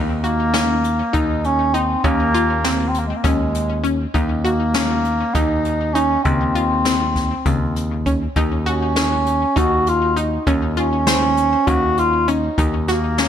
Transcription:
Already playing: picked electric bass D#2, synth arpeggio sound D#4
0.24 bass clarinet A#3, synth arpeggio sound F#4, closed hi-hat
0.54 synth arpeggio sound C#4, snare, closed hi-hat
0.84 closed hi-hat
1.13 picked electric bass D#2, synth arpeggio sound D#4, bass clarinet D#4, kick, closed hi-hat
1.44 bass clarinet C#4, closed hi-hat
1.74 bass clarinet C4, synth arpeggio sound D#4, closed hi-hat
2.04 picked electric bass D#2, bass clarinet A#3, synth arpeggio sound C#4, kick, closed hi-hat
2.34 synth arpeggio sound F4, closed hi-hat
2.64 synth arpeggio sound C4, snare, closed hi-hat
2.89 bass clarinet C4
2.94 closed hi-hat
2.98 bass clarinet A#3
3.07 bass clarinet G#3
3.16 bass clarinet A#3
3.24 picked electric bass D#2, bass clarinet G#3, synth arpeggio sound C#4, kick, closed hi-hat
3.54 closed hi-hat
3.84 synth arpeggio sound C#4, closed hi-hat
4.14 picked electric bass D#2, synth arpeggio sound D#4, kick, closed hi-hat
4.44 bass clarinet A#3, synth arpeggio sound F#4, closed hi-hat
4.74 synth arpeggio sound C#4, snare, closed hi-hat
5.05 closed hi-hat
5.34 picked electric bass D#2, bass clarinet D#4, synth arpeggio sound D#4, kick, closed hi-hat
5.65 closed hi-hat
5.94 bass clarinet C#4, synth arpeggio sound D#4, closed hi-hat
6.24 picked electric bass D#2, synth arpeggio sound C#3, bass clarinet C4, kick, closed hi-hat
6.55 synth arpeggio sound F4, closed hi-hat
6.85 synth arpeggio sound C4, snare, closed hi-hat
7.16 kick, snare, closed hi-hat
7.46 picked electric bass D#2, synth arpeggio sound C#3, kick, closed hi-hat
7.76 closed hi-hat
8.06 synth arpeggio sound C#4, kick, closed hi-hat
8.36 picked electric bass D#2, synth arpeggio sound D#4, kick, closed hi-hat
8.66 bass clarinet C#4, synth arpeggio sound F#4, closed hi-hat
8.96 synth arpeggio sound C#4, snare, closed hi-hat
9.26 closed hi-hat
9.56 picked electric bass D#2, synth arpeggio sound D#4, bass clarinet F#4, kick, closed hi-hat
9.87 bass clarinet F4, closed hi-hat
10.17 synth arpeggio sound D#4, bass clarinet D#4, closed hi-hat
10.47 picked electric bass D#2, synth arpeggio sound C#4, kick, closed hi-hat
10.77 bass clarinet C#4, synth arpeggio sound F4, closed hi-hat
11.07 synth arpeggio sound C5, snare, closed hi-hat
11.37 closed hi-hat
11.67 picked electric bass D#2, synth arpeggio sound C#4, bass clarinet F#4, kick, closed hi-hat
11.97 bass clarinet F4, closed hi-hat
12.28 synth arpeggio sound C#4, bass clarinet D#4, closed hi-hat
12.58 picked electric bass D#2, synth arpeggio sound D#4, kick, closed hi-hat
12.88 bass clarinet A#3, synth arpeggio sound F#4, snare, closed hi-hat
13.18 synth arpeggio sound C#4, snare, closed hi-hat

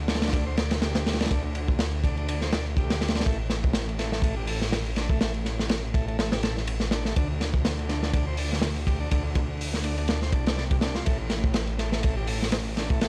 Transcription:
Already playing: detuned saw bass D2
0.08 tonewheel organ D4, snare, ride
0.15 snare, ride
0.22 tonewheel organ D4, snare, ride
0.27 snare, ride
0.33 tonewheel organ D4, kick, ride
0.47 tonewheel organ C5
0.57 tonewheel organ D5, snare, ride
0.71 snare, ride
0.82 tonewheel organ G4, snare, ride
0.95 snare, ride
1.06 snare, ride
1.13 snare, ride
1.20 tonewheel organ D4, snare, ride
1.26 snare, ride
1.31 detuned saw bass D2, tonewheel organ D4, kick, ride
1.55 ride
1.68 kick
1.79 snare, ride
2.04 tonewheel organ D4, kick, ride
2.17 tonewheel organ D4, ride
2.28 tonewheel organ D4, ride
2.41 tonewheel organ C5, snare
2.52 tonewheel organ D5, snare, ride
2.77 detuned saw bass D2, tonewheel organ G4, kick, ride
2.90 snare, ride
3.01 snare, ride
3.08 snare, ride
3.15 tonewheel organ D4, snare, ride
3.20 snare, ride
3.26 detuned saw bass A1, tonewheel organ A3, kick, ride
3.50 snare, ride
3.64 kick
3.73 snare, ride
3.89 ride
3.99 tonewheel organ A3, snare, ride
4.12 tonewheel organ A3, snare
4.22 tonewheel organ A3, kick, ride
4.37 tonewheel organ G4
4.47 tonewheel organ A4, open hi-hat
4.62 snare
4.72 snare, ride
4.86 ride
4.96 tonewheel organ D4, snare, ride
5.09 tonewheel organ A3, kick
5.20 detuned saw bass A1, tonewheel organ A3, snare, ride
5.34 ride
5.45 snare, ride
5.59 snare
5.69 snare, ride
5.94 tonewheel organ A3, kick, ride
6.07 tonewheel organ A3, ride
6.19 tonewheel organ A3, snare, ride
6.32 tonewheel organ G4, snare, ride
6.43 tonewheel organ A4, snare, ride
6.57 snare
6.67 ride
6.80 snare
6.91 tonewheel organ D4, snare, ride
7.05 tonewheel organ A3, snare
7.16 detuned saw bass D2, tonewheel organ D4, kick, ride
7.41 snare, ride
7.54 kick
7.65 snare, ride
7.79 ride
7.89 tonewheel organ D4, snare, ride
8.03 tonewheel organ D4, snare
8.13 tonewheel organ D4, kick, ride
8.27 tonewheel organ C5
8.37 tonewheel organ D5, open hi-hat
8.53 snare
8.62 snare, ride
8.76 ride
8.87 tonewheel organ G4, kick, ride
9.00 tonewheel organ D4
9.11 detuned saw bass D2, tonewheel organ D4, kick, ride
9.35 kick, ride
9.61 open hi-hat
9.74 snare
9.84 tonewheel organ D4, ride
9.98 tonewheel organ D4, ride
10.08 tonewheel organ D4, snare, ride
10.22 tonewheel organ C5, snare
10.32 detuned saw bass C2, tonewheel organ D4, kick, ride
10.46 tonewheel organ D4, snare, ride
10.57 tonewheel organ D5, snare
10.71 tonewheel organ G4, kick, ride
10.81 tonewheel organ D4, snare, ride
10.95 tonewheel organ F4, snare
11.06 detuned saw bass A1, tonewheel organ A3, kick, ride
11.30 snare, ride
11.44 kick
11.54 snare, ride
11.67 ride
11.78 tonewheel organ A3, snare, ride
11.92 tonewheel organ A3, snare
12.03 tonewheel organ A3, kick, ride
12.17 tonewheel organ G4
12.27 tonewheel organ A4, open hi-hat
12.42 snare
12.52 snare, ride
12.66 ride
12.77 tonewheel organ D4, snare, ride
12.90 tonewheel organ A3, kick
13.01 detuned saw bass A1, tonewheel organ A3, snare, ride

